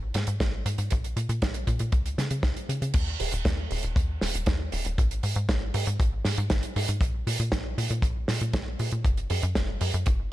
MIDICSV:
0, 0, Header, 1, 3, 480
1, 0, Start_track
1, 0, Key_signature, -6, "minor"
1, 0, Tempo, 508475
1, 860, Time_signature, 4, 2, 24, 8
1, 9751, End_track
2, 0, Start_track
2, 0, Title_t, "Analog synth bass"
2, 0, Program_c, 0, 38
2, 0, Note_on_c, 0, 32, 89
2, 109, Note_off_c, 0, 32, 0
2, 139, Note_on_c, 0, 44, 89
2, 246, Note_off_c, 0, 44, 0
2, 259, Note_on_c, 0, 44, 77
2, 366, Note_off_c, 0, 44, 0
2, 379, Note_on_c, 0, 32, 85
2, 593, Note_off_c, 0, 32, 0
2, 619, Note_on_c, 0, 44, 87
2, 726, Note_off_c, 0, 44, 0
2, 738, Note_on_c, 0, 44, 76
2, 846, Note_off_c, 0, 44, 0
2, 869, Note_on_c, 0, 34, 96
2, 1078, Note_off_c, 0, 34, 0
2, 1099, Note_on_c, 0, 46, 79
2, 1206, Note_off_c, 0, 46, 0
2, 1219, Note_on_c, 0, 46, 99
2, 1326, Note_off_c, 0, 46, 0
2, 1343, Note_on_c, 0, 34, 93
2, 1555, Note_off_c, 0, 34, 0
2, 1579, Note_on_c, 0, 46, 103
2, 1686, Note_off_c, 0, 46, 0
2, 1700, Note_on_c, 0, 46, 92
2, 1807, Note_off_c, 0, 46, 0
2, 1818, Note_on_c, 0, 37, 88
2, 2033, Note_off_c, 0, 37, 0
2, 2059, Note_on_c, 0, 49, 100
2, 2166, Note_off_c, 0, 49, 0
2, 2179, Note_on_c, 0, 49, 86
2, 2286, Note_off_c, 0, 49, 0
2, 2294, Note_on_c, 0, 37, 91
2, 2404, Note_off_c, 0, 37, 0
2, 2540, Note_on_c, 0, 49, 85
2, 2647, Note_off_c, 0, 49, 0
2, 2660, Note_on_c, 0, 49, 85
2, 2767, Note_off_c, 0, 49, 0
2, 2778, Note_on_c, 0, 39, 95
2, 2992, Note_off_c, 0, 39, 0
2, 3020, Note_on_c, 0, 27, 81
2, 3127, Note_off_c, 0, 27, 0
2, 3139, Note_on_c, 0, 27, 100
2, 3247, Note_off_c, 0, 27, 0
2, 3258, Note_on_c, 0, 39, 94
2, 3473, Note_off_c, 0, 39, 0
2, 3500, Note_on_c, 0, 27, 105
2, 3607, Note_off_c, 0, 27, 0
2, 3618, Note_on_c, 0, 27, 92
2, 3726, Note_off_c, 0, 27, 0
2, 3739, Note_on_c, 0, 39, 90
2, 3953, Note_off_c, 0, 39, 0
2, 3980, Note_on_c, 0, 27, 90
2, 4087, Note_off_c, 0, 27, 0
2, 4099, Note_on_c, 0, 27, 78
2, 4206, Note_off_c, 0, 27, 0
2, 4218, Note_on_c, 0, 39, 84
2, 4433, Note_off_c, 0, 39, 0
2, 4459, Note_on_c, 0, 27, 87
2, 4566, Note_off_c, 0, 27, 0
2, 4580, Note_on_c, 0, 27, 80
2, 4687, Note_off_c, 0, 27, 0
2, 4703, Note_on_c, 0, 32, 96
2, 4915, Note_off_c, 0, 32, 0
2, 4939, Note_on_c, 0, 44, 79
2, 5046, Note_off_c, 0, 44, 0
2, 5059, Note_on_c, 0, 44, 99
2, 5166, Note_off_c, 0, 44, 0
2, 5180, Note_on_c, 0, 32, 98
2, 5394, Note_off_c, 0, 32, 0
2, 5420, Note_on_c, 0, 44, 105
2, 5527, Note_off_c, 0, 44, 0
2, 5541, Note_on_c, 0, 44, 95
2, 5647, Note_off_c, 0, 44, 0
2, 5660, Note_on_c, 0, 32, 93
2, 5874, Note_off_c, 0, 32, 0
2, 5901, Note_on_c, 0, 44, 80
2, 6007, Note_off_c, 0, 44, 0
2, 6021, Note_on_c, 0, 44, 98
2, 6127, Note_off_c, 0, 44, 0
2, 6140, Note_on_c, 0, 32, 89
2, 6247, Note_off_c, 0, 32, 0
2, 6381, Note_on_c, 0, 44, 93
2, 6487, Note_off_c, 0, 44, 0
2, 6501, Note_on_c, 0, 44, 82
2, 6607, Note_off_c, 0, 44, 0
2, 6614, Note_on_c, 0, 34, 94
2, 6830, Note_off_c, 0, 34, 0
2, 6860, Note_on_c, 0, 46, 78
2, 6967, Note_off_c, 0, 46, 0
2, 6981, Note_on_c, 0, 46, 98
2, 7087, Note_off_c, 0, 46, 0
2, 7099, Note_on_c, 0, 34, 99
2, 7313, Note_off_c, 0, 34, 0
2, 7342, Note_on_c, 0, 46, 103
2, 7448, Note_off_c, 0, 46, 0
2, 7462, Note_on_c, 0, 46, 94
2, 7568, Note_off_c, 0, 46, 0
2, 7574, Note_on_c, 0, 34, 90
2, 7790, Note_off_c, 0, 34, 0
2, 7822, Note_on_c, 0, 46, 90
2, 7928, Note_off_c, 0, 46, 0
2, 7942, Note_on_c, 0, 46, 81
2, 8048, Note_off_c, 0, 46, 0
2, 8058, Note_on_c, 0, 34, 86
2, 8272, Note_off_c, 0, 34, 0
2, 8302, Note_on_c, 0, 46, 89
2, 8408, Note_off_c, 0, 46, 0
2, 8423, Note_on_c, 0, 46, 78
2, 8528, Note_off_c, 0, 46, 0
2, 8538, Note_on_c, 0, 30, 99
2, 8753, Note_off_c, 0, 30, 0
2, 8782, Note_on_c, 0, 42, 82
2, 8888, Note_off_c, 0, 42, 0
2, 8901, Note_on_c, 0, 42, 98
2, 9007, Note_off_c, 0, 42, 0
2, 9019, Note_on_c, 0, 30, 99
2, 9233, Note_off_c, 0, 30, 0
2, 9261, Note_on_c, 0, 42, 102
2, 9367, Note_off_c, 0, 42, 0
2, 9382, Note_on_c, 0, 42, 96
2, 9488, Note_off_c, 0, 42, 0
2, 9504, Note_on_c, 0, 30, 90
2, 9715, Note_off_c, 0, 30, 0
2, 9751, End_track
3, 0, Start_track
3, 0, Title_t, "Drums"
3, 135, Note_on_c, 9, 42, 90
3, 149, Note_on_c, 9, 38, 52
3, 229, Note_off_c, 9, 42, 0
3, 244, Note_off_c, 9, 38, 0
3, 253, Note_on_c, 9, 42, 60
3, 347, Note_off_c, 9, 42, 0
3, 380, Note_on_c, 9, 36, 110
3, 382, Note_on_c, 9, 38, 104
3, 382, Note_on_c, 9, 42, 83
3, 474, Note_off_c, 9, 36, 0
3, 476, Note_off_c, 9, 38, 0
3, 476, Note_off_c, 9, 42, 0
3, 621, Note_on_c, 9, 42, 91
3, 716, Note_off_c, 9, 42, 0
3, 737, Note_on_c, 9, 42, 58
3, 832, Note_off_c, 9, 42, 0
3, 853, Note_on_c, 9, 42, 90
3, 869, Note_on_c, 9, 36, 107
3, 948, Note_off_c, 9, 42, 0
3, 963, Note_off_c, 9, 36, 0
3, 985, Note_on_c, 9, 42, 50
3, 1079, Note_off_c, 9, 42, 0
3, 1102, Note_on_c, 9, 42, 81
3, 1196, Note_off_c, 9, 42, 0
3, 1220, Note_on_c, 9, 42, 60
3, 1315, Note_off_c, 9, 42, 0
3, 1339, Note_on_c, 9, 42, 98
3, 1343, Note_on_c, 9, 36, 108
3, 1346, Note_on_c, 9, 38, 107
3, 1434, Note_off_c, 9, 42, 0
3, 1437, Note_off_c, 9, 36, 0
3, 1441, Note_off_c, 9, 38, 0
3, 1455, Note_on_c, 9, 42, 56
3, 1549, Note_off_c, 9, 42, 0
3, 1579, Note_on_c, 9, 36, 60
3, 1580, Note_on_c, 9, 42, 78
3, 1673, Note_off_c, 9, 36, 0
3, 1674, Note_off_c, 9, 42, 0
3, 1692, Note_on_c, 9, 42, 60
3, 1787, Note_off_c, 9, 42, 0
3, 1815, Note_on_c, 9, 42, 84
3, 1818, Note_on_c, 9, 36, 119
3, 1909, Note_off_c, 9, 42, 0
3, 1912, Note_off_c, 9, 36, 0
3, 1941, Note_on_c, 9, 42, 58
3, 2035, Note_off_c, 9, 42, 0
3, 2061, Note_on_c, 9, 38, 56
3, 2063, Note_on_c, 9, 42, 86
3, 2155, Note_off_c, 9, 38, 0
3, 2157, Note_off_c, 9, 42, 0
3, 2176, Note_on_c, 9, 42, 64
3, 2271, Note_off_c, 9, 42, 0
3, 2294, Note_on_c, 9, 36, 120
3, 2294, Note_on_c, 9, 38, 100
3, 2305, Note_on_c, 9, 42, 77
3, 2388, Note_off_c, 9, 36, 0
3, 2389, Note_off_c, 9, 38, 0
3, 2400, Note_off_c, 9, 42, 0
3, 2422, Note_on_c, 9, 42, 52
3, 2517, Note_off_c, 9, 42, 0
3, 2545, Note_on_c, 9, 42, 85
3, 2639, Note_off_c, 9, 42, 0
3, 2663, Note_on_c, 9, 42, 65
3, 2757, Note_off_c, 9, 42, 0
3, 2771, Note_on_c, 9, 49, 102
3, 2778, Note_on_c, 9, 36, 127
3, 2783, Note_on_c, 9, 42, 94
3, 2866, Note_off_c, 9, 49, 0
3, 2872, Note_off_c, 9, 36, 0
3, 2877, Note_off_c, 9, 42, 0
3, 3019, Note_on_c, 9, 46, 115
3, 3114, Note_off_c, 9, 46, 0
3, 3139, Note_on_c, 9, 42, 68
3, 3233, Note_off_c, 9, 42, 0
3, 3258, Note_on_c, 9, 36, 104
3, 3260, Note_on_c, 9, 38, 114
3, 3261, Note_on_c, 9, 42, 99
3, 3352, Note_off_c, 9, 36, 0
3, 3355, Note_off_c, 9, 38, 0
3, 3355, Note_off_c, 9, 42, 0
3, 3499, Note_on_c, 9, 46, 100
3, 3593, Note_off_c, 9, 46, 0
3, 3613, Note_on_c, 9, 42, 67
3, 3708, Note_off_c, 9, 42, 0
3, 3738, Note_on_c, 9, 36, 123
3, 3746, Note_on_c, 9, 42, 101
3, 3833, Note_off_c, 9, 36, 0
3, 3841, Note_off_c, 9, 42, 0
3, 3979, Note_on_c, 9, 38, 60
3, 3983, Note_on_c, 9, 46, 108
3, 4073, Note_off_c, 9, 38, 0
3, 4078, Note_off_c, 9, 46, 0
3, 4102, Note_on_c, 9, 42, 66
3, 4196, Note_off_c, 9, 42, 0
3, 4213, Note_on_c, 9, 42, 87
3, 4218, Note_on_c, 9, 36, 99
3, 4222, Note_on_c, 9, 38, 108
3, 4307, Note_off_c, 9, 42, 0
3, 4313, Note_off_c, 9, 36, 0
3, 4317, Note_off_c, 9, 38, 0
3, 4458, Note_on_c, 9, 46, 101
3, 4552, Note_off_c, 9, 46, 0
3, 4576, Note_on_c, 9, 42, 66
3, 4670, Note_off_c, 9, 42, 0
3, 4703, Note_on_c, 9, 36, 121
3, 4704, Note_on_c, 9, 42, 90
3, 4798, Note_off_c, 9, 36, 0
3, 4799, Note_off_c, 9, 42, 0
3, 4824, Note_on_c, 9, 42, 52
3, 4919, Note_off_c, 9, 42, 0
3, 4938, Note_on_c, 9, 46, 101
3, 5033, Note_off_c, 9, 46, 0
3, 5055, Note_on_c, 9, 42, 65
3, 5149, Note_off_c, 9, 42, 0
3, 5180, Note_on_c, 9, 36, 108
3, 5183, Note_on_c, 9, 42, 88
3, 5184, Note_on_c, 9, 38, 115
3, 5274, Note_off_c, 9, 36, 0
3, 5277, Note_off_c, 9, 42, 0
3, 5278, Note_off_c, 9, 38, 0
3, 5420, Note_on_c, 9, 46, 121
3, 5514, Note_off_c, 9, 46, 0
3, 5539, Note_on_c, 9, 42, 72
3, 5633, Note_off_c, 9, 42, 0
3, 5661, Note_on_c, 9, 36, 125
3, 5667, Note_on_c, 9, 42, 90
3, 5755, Note_off_c, 9, 36, 0
3, 5762, Note_off_c, 9, 42, 0
3, 5896, Note_on_c, 9, 38, 60
3, 5900, Note_on_c, 9, 46, 100
3, 5991, Note_off_c, 9, 38, 0
3, 5995, Note_off_c, 9, 46, 0
3, 6017, Note_on_c, 9, 42, 67
3, 6112, Note_off_c, 9, 42, 0
3, 6135, Note_on_c, 9, 42, 92
3, 6136, Note_on_c, 9, 38, 111
3, 6140, Note_on_c, 9, 36, 109
3, 6229, Note_off_c, 9, 42, 0
3, 6230, Note_off_c, 9, 38, 0
3, 6235, Note_off_c, 9, 36, 0
3, 6256, Note_on_c, 9, 42, 58
3, 6350, Note_off_c, 9, 42, 0
3, 6383, Note_on_c, 9, 46, 111
3, 6477, Note_off_c, 9, 46, 0
3, 6493, Note_on_c, 9, 42, 67
3, 6587, Note_off_c, 9, 42, 0
3, 6614, Note_on_c, 9, 36, 127
3, 6621, Note_on_c, 9, 42, 93
3, 6708, Note_off_c, 9, 36, 0
3, 6715, Note_off_c, 9, 42, 0
3, 6864, Note_on_c, 9, 46, 113
3, 6958, Note_off_c, 9, 46, 0
3, 6983, Note_on_c, 9, 42, 66
3, 7077, Note_off_c, 9, 42, 0
3, 7096, Note_on_c, 9, 38, 127
3, 7099, Note_on_c, 9, 36, 111
3, 7099, Note_on_c, 9, 42, 85
3, 7191, Note_off_c, 9, 38, 0
3, 7193, Note_off_c, 9, 36, 0
3, 7193, Note_off_c, 9, 42, 0
3, 7346, Note_on_c, 9, 46, 102
3, 7440, Note_off_c, 9, 46, 0
3, 7459, Note_on_c, 9, 42, 71
3, 7553, Note_off_c, 9, 42, 0
3, 7574, Note_on_c, 9, 36, 122
3, 7578, Note_on_c, 9, 42, 90
3, 7668, Note_off_c, 9, 36, 0
3, 7672, Note_off_c, 9, 42, 0
3, 7817, Note_on_c, 9, 38, 65
3, 7822, Note_on_c, 9, 46, 100
3, 7911, Note_off_c, 9, 38, 0
3, 7916, Note_off_c, 9, 46, 0
3, 7939, Note_on_c, 9, 42, 69
3, 8033, Note_off_c, 9, 42, 0
3, 8056, Note_on_c, 9, 42, 82
3, 8058, Note_on_c, 9, 36, 110
3, 8065, Note_on_c, 9, 38, 111
3, 8151, Note_off_c, 9, 42, 0
3, 8152, Note_off_c, 9, 36, 0
3, 8159, Note_off_c, 9, 38, 0
3, 8300, Note_on_c, 9, 46, 99
3, 8395, Note_off_c, 9, 46, 0
3, 8414, Note_on_c, 9, 42, 65
3, 8509, Note_off_c, 9, 42, 0
3, 8538, Note_on_c, 9, 36, 118
3, 8545, Note_on_c, 9, 42, 85
3, 8633, Note_off_c, 9, 36, 0
3, 8639, Note_off_c, 9, 42, 0
3, 8660, Note_on_c, 9, 42, 51
3, 8754, Note_off_c, 9, 42, 0
3, 8778, Note_on_c, 9, 46, 108
3, 8872, Note_off_c, 9, 46, 0
3, 8897, Note_on_c, 9, 42, 59
3, 8992, Note_off_c, 9, 42, 0
3, 9019, Note_on_c, 9, 38, 126
3, 9020, Note_on_c, 9, 36, 101
3, 9023, Note_on_c, 9, 42, 86
3, 9113, Note_off_c, 9, 38, 0
3, 9114, Note_off_c, 9, 36, 0
3, 9117, Note_off_c, 9, 42, 0
3, 9258, Note_on_c, 9, 46, 102
3, 9353, Note_off_c, 9, 46, 0
3, 9386, Note_on_c, 9, 42, 64
3, 9480, Note_off_c, 9, 42, 0
3, 9495, Note_on_c, 9, 42, 89
3, 9504, Note_on_c, 9, 36, 110
3, 9589, Note_off_c, 9, 42, 0
3, 9598, Note_off_c, 9, 36, 0
3, 9751, End_track
0, 0, End_of_file